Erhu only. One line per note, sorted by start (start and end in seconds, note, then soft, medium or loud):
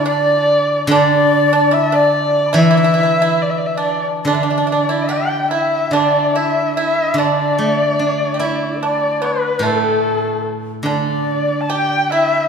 0.07 0.86 D5 loud
0.89 1.75 D5 medium
1.74 1.97 E5 medium
1.95 2.60 D5 loud
2.58 3.44 E5 loud
3.42 3.51 D5 medium
3.50 3.60 E5 medium
3.58 3.68 D5 medium
3.67 3.79 E5 medium
3.77 4.07 D5 medium
4.27 5.14 D5 medium
5.12 5.51 G5 medium
5.51 5.94 E5 medium
5.92 6.38 D5 medium
6.36 6.76 E5 medium
6.77 7.20 E5 medium
7.19 8.82 D5 medium
8.84 9.26 D5 medium
9.25 9.68 B4 medium
9.66 10.47 A4 medium
10.86 11.62 D5 medium
11.61 11.71 A5 medium
11.70 12.11 G5 loud
12.13 12.48 E5 medium